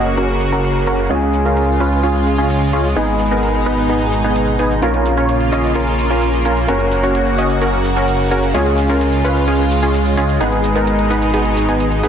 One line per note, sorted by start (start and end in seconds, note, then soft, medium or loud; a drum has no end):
0.00 1.08 F#1 medium
0.00 2.93 C#3 medium
0.00 1.07 A#3 medium
0.00 0.15 C#4 medium
0.00 1.07 C#4 medium
0.00 0.15 F#4 medium
0.00 1.08 F#4 medium
0.00 1.09 F#4 medium
0.00 1.08 A#4 medium
0.00 0.15 D#5 medium
0.00 downlifter medium
0.06 closed hi-hat soft
0.06 cabasa soft
0.17 0.49 C#4 medium
0.17 0.50 F#4 medium
0.17 0.49 A#4 medium
0.17 closed hi-hat medium
0.17 cabasa soft
0.29 closed hi-hat soft
0.41 closed hi-hat medium
0.41 cabasa medium
0.52 0.84 C#4 medium
0.52 0.84 F#4 medium
0.52 0.84 A#4 medium
0.52 closed hi-hat soft
0.52 cabasa soft
0.64 closed hi-hat medium
0.64 cabasa soft
0.76 closed hi-hat soft
0.87 1.01 C#4 medium
0.87 1.01 F#4 medium
0.87 1.01 A#4 medium
0.87 closed hi-hat medium
0.87 cabasa medium
0.99 closed hi-hat soft
0.99 cabasa soft
1.09 2.94 C#2 medium
1.09 2.93 G#3 medium
1.09 4.79 G#3 medium
1.09 2.93 C#4 medium
1.09 1.43 C#4 loud
1.09 1.43 F4 medium
1.09 2.95 F4 medium
1.09 2.94 F4 medium
1.09 1.43 G#4 loud
1.09 2.94 G#4 medium
1.09 closed hi-hat medium
1.09 cabasa soft
1.22 closed hi-hat soft
1.34 closed hi-hat medium
1.34 cabasa medium
1.45 1.77 C#4 medium
1.45 1.77 F4 medium
1.45 1.77 A#4 medium
1.45 closed hi-hat soft
1.45 cabasa soft
1.57 closed hi-hat medium
1.57 cabasa soft
1.69 closed hi-hat soft
1.80 2.01 C#4 medium
1.80 2.01 F4 medium
1.80 2.01 B4 loud
1.80 closed hi-hat soft
1.80 cabasa medium
1.92 closed hi-hat soft
1.92 cabasa soft
2.03 2.36 C#4 medium
2.03 2.36 F4 medium
2.03 2.36 G#4 medium
2.03 closed hi-hat medium
2.03 cabasa soft
2.15 closed hi-hat soft
2.27 closed hi-hat medium
2.27 cabasa medium
2.38 2.70 C#4 medium
2.38 2.70 F4 medium
2.38 2.70 G#4 medium
2.38 closed hi-hat soft
2.38 cabasa soft
2.50 closed hi-hat medium
2.50 cabasa soft
2.62 closed hi-hat soft
2.73 2.87 C#4 medium
2.73 2.87 F4 medium
2.73 2.87 G#4 medium
2.73 closed hi-hat medium
2.73 cabasa medium
2.85 closed hi-hat soft
2.85 cabasa soft
2.95 4.80 G#1 medium
2.95 4.81 B2 medium
2.95 4.79 G#3 medium
2.95 4.79 B3 medium
2.95 3.29 B3 loud
2.95 4.81 D#4 medium
2.95 3.29 D#4 medium
2.95 4.80 D#4 medium
2.95 3.29 G#4 loud
2.95 4.80 G#4 medium
2.95 closed hi-hat medium
2.95 cabasa soft
3.08 closed hi-hat soft
3.20 closed hi-hat medium
3.20 cabasa medium
3.31 3.63 B3 medium
3.31 3.63 D#4 medium
3.31 3.63 A#4 medium
3.31 closed hi-hat soft
3.31 cabasa soft
3.43 closed hi-hat medium
3.43 cabasa soft
3.55 closed hi-hat soft
3.66 3.87 B3 medium
3.66 3.87 D#4 medium
3.66 3.87 B4 medium
3.66 closed hi-hat soft
3.66 cabasa medium
3.78 closed hi-hat soft
3.78 cabasa soft
3.89 4.22 B3 medium
3.89 4.22 D#4 medium
3.89 4.22 G#4 medium
3.89 closed hi-hat medium
3.89 cabasa soft
4.01 closed hi-hat soft
4.13 closed hi-hat medium
4.13 cabasa medium
4.24 4.56 B3 medium
4.24 4.56 D#4 medium
4.24 4.56 G#4 medium
4.24 closed hi-hat soft
4.24 cabasa soft
4.36 closed hi-hat medium
4.36 cabasa soft
4.48 closed hi-hat soft
4.59 4.73 B3 medium
4.59 4.73 D#4 medium
4.59 4.73 G#4 loud
4.59 closed hi-hat medium
4.59 cabasa medium
4.71 closed hi-hat soft
4.71 cabasa soft
4.81 6.66 A#1 medium
4.81 6.67 C#3 medium
4.81 6.65 A#3 medium
4.81 8.51 A#3 medium
4.81 6.65 C#4 medium
4.81 5.15 C#4 loud
4.81 6.67 F4 medium
4.81 5.15 F4 medium
4.81 6.66 F4 medium
4.81 5.15 A#4 loud
4.81 6.66 A#4 medium
4.81 closed hi-hat medium
4.81 cabasa soft
4.94 closed hi-hat soft
5.06 closed hi-hat medium
5.06 cabasa medium
5.17 5.50 C#4 medium
5.17 5.49 F4 medium
5.17 5.50 C#5 medium
5.17 closed hi-hat soft
5.17 cabasa soft
5.29 closed hi-hat medium
5.29 cabasa soft
5.41 closed hi-hat soft
5.52 5.73 C#4 medium
5.52 5.73 F4 medium
5.52 5.73 D#5 medium
5.52 closed hi-hat soft
5.52 cabasa medium
5.64 closed hi-hat soft
5.64 cabasa soft
5.75 6.08 C#4 medium
5.75 6.08 F4 medium
5.75 6.08 A#4 medium
5.75 closed hi-hat medium
5.75 cabasa soft
5.87 closed hi-hat soft
5.99 closed hi-hat medium
5.99 cabasa medium
6.10 6.43 C#4 medium
6.10 6.43 F4 medium
6.10 6.42 A#4 medium
6.10 closed hi-hat soft
6.10 cabasa soft
6.22 closed hi-hat medium
6.22 cabasa soft
6.34 closed hi-hat soft
6.45 6.59 C#4 medium
6.45 6.59 F4 medium
6.45 6.59 A#4 medium
6.45 closed hi-hat medium
6.45 cabasa medium
6.57 closed hi-hat soft
6.57 cabasa soft
6.67 8.52 F#1 medium
6.67 10.37 C#3 medium
6.67 8.51 A#3 medium
6.67 8.52 C#4 medium
6.67 7.01 C#4 loud
6.67 7.01 F#4 medium
6.67 8.53 F#4 medium
6.67 8.52 F#4 medium
6.67 7.01 A#4 loud
6.67 8.52 A#4 medium
6.67 closed hi-hat medium
6.67 cabasa soft
6.80 closed hi-hat soft
6.92 closed hi-hat medium
6.92 cabasa medium
7.03 7.36 C#4 medium
7.03 7.36 F#4 medium
7.03 7.36 C#5 medium
7.03 closed hi-hat soft
7.03 cabasa soft
7.15 closed hi-hat medium
7.15 cabasa soft
7.27 closed hi-hat soft
7.38 7.59 C#4 medium
7.38 7.59 F#4 medium
7.38 7.59 D#5 medium
7.38 closed hi-hat soft
7.38 cabasa medium
7.50 closed hi-hat soft
7.50 cabasa soft
7.62 7.94 C#4 medium
7.62 7.94 F#4 medium
7.62 7.94 A#4 medium
7.62 closed hi-hat medium
7.62 cabasa soft
7.73 closed hi-hat soft
7.85 closed hi-hat medium
7.85 cabasa medium
7.96 8.29 C#4 medium
7.96 8.29 F#4 medium
7.96 8.29 A#4 medium
7.96 closed hi-hat soft
7.96 cabasa soft
8.08 closed hi-hat medium
8.08 cabasa soft
8.20 closed hi-hat soft
8.31 8.45 C#4 medium
8.31 8.45 F#4 medium
8.31 8.45 A#4 medium
8.31 closed hi-hat medium
8.31 cabasa medium
8.43 closed hi-hat soft
8.43 cabasa soft
8.53 10.38 C#2 medium
8.53 10.37 G#3 medium
8.53 12.09 G#3 medium
8.53 10.38 C#4 medium
8.53 8.87 C#4 loud
8.53 10.39 F4 medium
8.53 8.87 F4 medium
8.53 10.38 F4 medium
8.53 8.87 G#4 loud
8.53 10.38 G#4 medium
8.53 closed hi-hat medium
8.53 cabasa soft
8.66 closed hi-hat soft
8.78 closed hi-hat medium
8.78 cabasa medium
8.90 9.22 C#4 medium
8.90 9.22 F4 medium
8.90 9.22 A#4 medium
8.90 closed hi-hat soft
8.90 cabasa soft
9.01 closed hi-hat medium
9.01 cabasa soft
9.13 closed hi-hat soft
9.24 9.45 C#4 medium
9.24 9.45 F4 medium
9.24 9.45 B4 medium
9.24 closed hi-hat soft
9.24 cabasa medium
9.36 closed hi-hat soft
9.36 cabasa soft
9.48 9.80 C#4 medium
9.48 9.80 F4 medium
9.48 9.80 G#4 medium
9.48 closed hi-hat medium
9.48 cabasa soft
9.59 closed hi-hat soft
9.71 closed hi-hat medium
9.71 cabasa medium
9.83 10.15 C#4 medium
9.83 10.15 F4 medium
9.83 10.15 G#4 medium
9.83 closed hi-hat soft
9.83 cabasa soft
9.94 closed hi-hat medium
9.94 cabasa soft
10.06 closed hi-hat soft
10.17 10.31 C#4 medium
10.17 10.31 F4 medium
10.17 10.31 G#4 loud
10.17 closed hi-hat medium
10.17 cabasa medium
10.29 closed hi-hat soft
10.29 cabasa soft
10.39 12.09 G#1 medium
10.39 12.09 B2 medium
10.39 12.09 G#3 medium
10.39 12.09 B3 medium
10.39 10.73 B3 loud
10.39 10.73 D#4 medium
10.39 12.09 D#4 medium
10.39 10.73 G#4 loud
10.39 12.09 G#4 medium
10.39 closed hi-hat medium
10.39 cabasa soft
10.52 closed hi-hat soft
10.64 closed hi-hat medium
10.64 cabasa medium
10.75 11.08 B3 medium
10.75 11.08 D#4 medium
10.75 11.08 A#4 medium
10.75 closed hi-hat soft
10.75 cabasa soft
10.87 closed hi-hat medium
10.87 cabasa soft
10.99 closed hi-hat soft
11.10 11.31 B3 medium
11.10 11.31 D#4 medium
11.10 11.31 B4 medium
11.10 closed hi-hat soft
11.10 cabasa medium
11.22 closed hi-hat soft
11.22 cabasa soft
11.34 11.66 B3 medium
11.34 11.66 D#4 medium
11.34 11.66 G#4 medium
11.34 closed hi-hat medium
11.34 cabasa soft
11.45 closed hi-hat soft
11.57 closed hi-hat medium
11.57 cabasa medium
11.69 12.01 B3 medium
11.69 12.01 D#4 medium
11.69 12.01 G#4 medium
11.69 closed hi-hat soft
11.69 cabasa soft
11.80 closed hi-hat medium
11.80 cabasa soft
11.92 closed hi-hat soft
12.03 12.09 B3 medium
12.03 12.09 D#4 medium
12.03 12.09 G#4 loud
12.03 closed hi-hat medium
12.03 cabasa medium